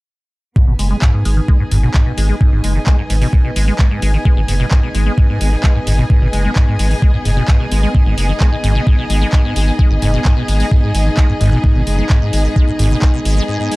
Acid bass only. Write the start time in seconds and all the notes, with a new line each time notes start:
0.56 G#2
0.68 B2
0.79 G#3
0.91 G#3
1.02 G#2
1.14 G#2
1.25 G#3
1.37 D#3
1.48 G#3
1.60 G#2
1.71 G#2
1.83 B2
1.95 G#2
2.06 B2
2.18 G#3
2.29 G#3
2.41 G#2
2.52 G#2
2.64 G#3
2.75 D#3
2.87 G#3
2.98 G#2
3.10 G#2
3.22 B2
3.33 G#2
3.45 B2
3.56 G#3
3.68 G#3
3.79 G#2
3.91 G#2
4.02 G#3
4.14 D#3
4.25 G#3
4.37 G#2
4.48 G#2
4.60 B2
4.72 G#2
4.83 B2
4.95 G#3
5.06 G#3
5.18 G#2
5.29 G#2
5.41 G#3
5.52 D#3
5.64 G#3
5.75 G#2
5.87 G#2
5.98 B2
6.10 G#2
6.22 B2
6.33 G#3
6.45 G#3
6.56 G#2
6.68 G#2
6.79 G#3
6.91 D#3
7.02 G#3
7.14 G#2
7.25 G#2
7.37 B2
7.48 G#2
7.60 B2
7.71 G#3
7.83 G#3
7.94 G#2
8.06 G#2
8.18 G#3
8.29 D#3
8.41 G#3
8.52 G#2
8.64 G#2
8.75 B2
8.87 G#2
8.98 B2
9.10 G#3
9.21 G#3
9.33 G#2
9.45 G#2
9.56 G#3
9.68 D#3
9.79 G#3
9.91 G#2
10.02 G#2
10.14 B2
10.25 G#2
10.37 B2
10.48 G#3
10.60 G#3
10.72 G#2
10.83 G#2
10.95 G#3
11.06 D#3
11.18 G#3
11.29 G#2
11.41 G#2
11.52 B2
11.64 G#2
11.75 B2
11.87 G#3
11.99 G#3
12.10 G#2
12.22 G#2
12.33 G#3
12.45 D#3
12.56 G#3
12.68 G#2
12.79 G#2
12.91 B2
13.02 G#2
13.14 B2
13.25 G#3
13.37 G#3
13.48 G#2
13.60 G#2
13.71 G#3